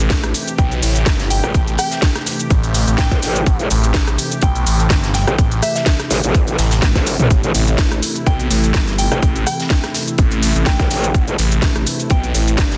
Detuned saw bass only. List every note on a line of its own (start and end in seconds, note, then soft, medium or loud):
0.00 0.33 A1 loud
0.58 0.81 B1 loud
0.82 1.05 A1 loud
1.06 1.41 G1 medium
1.54 1.77 A1 medium
2.50 2.85 A1 loud
2.87 3.09 A1 loud
3.46 3.57 A1 medium
3.70 4.17 A1 loud
4.42 4.65 B1 loud
4.66 4.89 A1 loud
4.90 5.25 G1 medium
5.38 5.61 A1 loud
6.58 6.81 A1 loud
6.83 6.93 A1 loud
7.31 7.41 A1 loud
7.54 8.01 A1 loud
8.26 8.49 B1 loud
8.50 8.73 A1 loud
8.74 9.09 G1 loud
9.22 9.45 A1 medium
10.19 10.53 A1 medium
10.55 10.77 A1 loud
11.14 11.25 A1 medium
11.38 11.85 A1 loud
12.10 12.33 B1 loud
12.34 12.57 A1 loud
12.58 12.78 G1 loud